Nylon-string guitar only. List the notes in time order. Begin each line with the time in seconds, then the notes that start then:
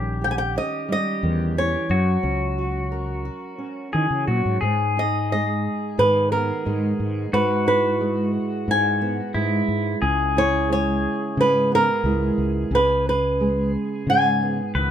Already playing: A#4
0.24 G5
0.31 G#5
0.38 G5
0.58 D#5
0.92 D#5
1.58 C#5
4.99 D#5
5.32 D#5
5.99 B4
6.32 A#4
7.34 B4
7.68 B4
8.71 G#5
10.38 C#5
10.72 C#5
11.41 B4
11.75 A#4
12.75 B4
13.09 B4
14.10 G#5
14.78 F#5